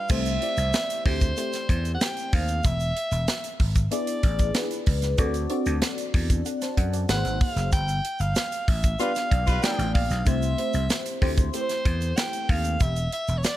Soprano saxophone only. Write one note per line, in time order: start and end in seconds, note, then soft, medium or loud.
0.00 0.12 F5 loud
0.11 1.05 E5 loud
1.06 1.90 C5 loud
1.95 2.03 F#5 medium
2.02 2.36 G5 medium
2.34 2.67 F5 medium
2.65 3.65 E5 loud
3.93 4.84 D5 medium
7.10 7.44 F#5 loud
7.42 7.72 F5 loud
7.73 8.22 G5 loud
8.21 8.70 F5 loud
8.68 9.00 E5 medium
9.00 9.65 F5 loud
9.63 9.93 G5 medium
9.94 10.28 F5 medium
10.27 11.27 E5 loud
11.55 12.19 C5 loud
12.17 12.52 G5 medium
12.51 12.83 F5 loud
12.82 13.12 E5 loud
13.13 13.39 E5 loud
13.38 13.46 C#5 medium
13.44 13.57 D5 loud